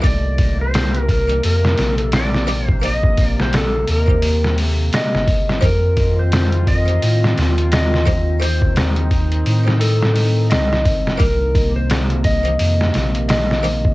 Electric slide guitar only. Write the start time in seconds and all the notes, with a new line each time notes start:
0.05 D5
0.61 C5
1.10 A#4
1.46 A#4
1.96 A4
2.15 D5
2.68 C5
2.85 D#5
3.26 D5
3.41 C5
3.57 A4
3.92 A#4
4.95 D#5
5.65 A#4
6.19 C5
6.68 D#5
7.39 D5
7.72 D#5
8.41 C5
9.80 A4
10.50 D#5
11.20 A#4
11.76 C5
12.25 D#5
13.28 D#5